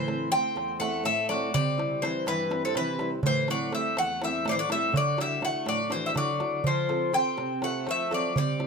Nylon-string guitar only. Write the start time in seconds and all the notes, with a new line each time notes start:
Already playing: A2
0.07 A3 C4 E4
0.31 A3 C4 E4
0.56 E2
0.79 A3 C4 E4
1.04 A2
1.29 A3 C4 E4
1.54 C3
1.77 G3 C4 E4
2.02 G3 C4 E4
2.26 G2
2.50 G3 C4 E4
2.75 C3
2.99 G3 C4 E4
3.23 A2
3.49 A3 C4 E4
3.72 A3 C4 E4
3.98 E2
4.21 A3 C4 E4
4.45 A2
4.69 A3 C4 E4
4.92 D3
5.17 D4 E4 F#4
5.41 D4 E4 F#4
5.66 A2
5.89 D4 E4 F#4
6.15 D3
6.40 D4 E4 F#4
6.64 F3
6.89 C4 F4 A4
7.12 C4 F4 A4
7.37 C3
7.62 C4 F4 A4
7.87 F3
8.11 C4 F4 A4
8.36 C3
8.59 C4 E4 G4